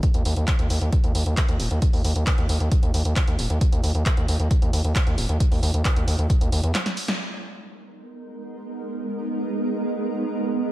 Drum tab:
HH |xxoxxxoxxxoxxxox|xooxxxoxxxoxxxox|xxoxxxoxxxoxxxox|xooxxxoxxxoxxxox|
CP |----x-------x---|----x-------x---|----x-------x---|----x-------x---|
SD |----------------|----------------|----------------|------------oo-o|
BD |o---o---o---o---|o---o---o---o---|o---o---o---o---|o---o---o-------|

HH |----------------|----------------|
CP |----------------|----------------|
SD |----------------|----------------|
BD |----------------|----------------|